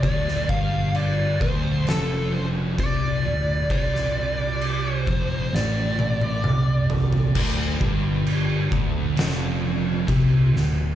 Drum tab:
CC |x---x---x---x---|x---x-----------|x---x---x---x---|
SD |-o------o-------|-o------o-------|--------o-----o-|
T1 |----------------|----------oo----|----------------|
T2 |----------------|------------o---|----------------|
FT |----------------|--------------oo|----------------|
BD |o-o---o-----o---|o-----o---------|o-o---o-----o---|